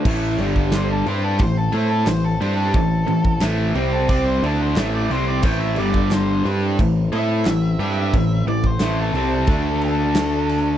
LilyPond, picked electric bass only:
\new Staff \with { instrumentName = "Picked electric bass" } { \clef bass \time 4/4 \key a \minor \tempo 4 = 89 a,,8 g,,4 g,8 a,,8 a,8 a,,8 g,8 | a,,8 a,,8 a,,8 c,4 d,8 a,,8 c,8 | a,,8 g,,4 g,8 a,,8 a,8 a,,8 g,8 | a,,8 a,,8 a,,8 c,8 d,2 | }